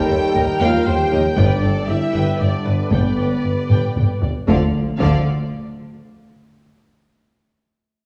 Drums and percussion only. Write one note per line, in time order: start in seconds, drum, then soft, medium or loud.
0.36 taiko low medium
1.37 taiko loud
2.91 taiko medium
3.70 taiko mid medium
3.96 taiko mid medium
4.22 taiko low medium
4.48 taiko medium
4.99 taiko medium